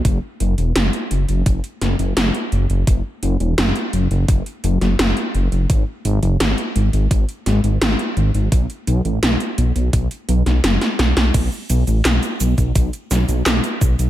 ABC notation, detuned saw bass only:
X:1
M:4/4
L:1/16
Q:1/4=85
K:Bdor
V:1 name="Detuned saw bass" clef=bass
F,,, z F,,, E,,, F,,, z F,,, F,,, F,,, z F,,, F,,, F,,, z F,,, F,,, | F,,, z F,,, E,,, F,,, z F,,, F,,, F,,, z F,,, F,,, F,,, z F,,, F,,, | G,,, z G,,, F,,, G,,, z G,,, G,,, G,,, z G,,, G,,, G,,, z G,,, G,,, | B,,, z B,,, A,,, B,,, z B,,, B,,, B,,, z B,,, B,,, F,,, z B,,, B,,, |
B,,, z B,,, A,,, B,,, z B,,, B,,, B,,, z B,,, B,,, B,,, z B,,, B,,, |]